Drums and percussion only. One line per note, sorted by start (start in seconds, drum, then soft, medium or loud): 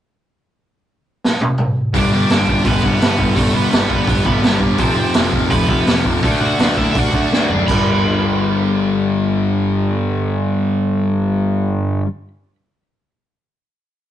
1.24 snare medium
1.41 high tom medium
1.58 mid tom medium
1.94 kick loud
1.94 open hi-hat medium
2.30 snare loud
2.30 open hi-hat medium
2.47 kick medium
2.65 kick loud
2.65 open hi-hat medium
2.83 kick medium
3.01 snare loud
3.01 open hi-hat medium
3.19 kick medium
3.36 kick loud
3.36 open hi-hat medium
3.72 snare loud
3.72 open hi-hat medium
3.90 kick medium
4.08 kick loud
4.08 open hi-hat medium
4.25 kick medium
4.43 snare loud
4.43 open hi-hat soft
4.61 kick medium
4.78 kick loud
4.78 open hi-hat medium
5.14 snare loud
5.14 open hi-hat medium
5.32 kick medium
5.50 kick loud
5.50 open hi-hat medium
5.69 kick loud
5.87 snare loud
5.87 open hi-hat medium
6.05 kick medium
6.23 kick loud
6.23 open hi-hat medium
6.59 snare loud
6.59 open hi-hat medium
6.77 kick medium
6.95 kick loud
6.95 open hi-hat medium
7.13 kick medium
7.33 snare medium
7.50 floor tom medium
7.68 kick loud
7.68 crash medium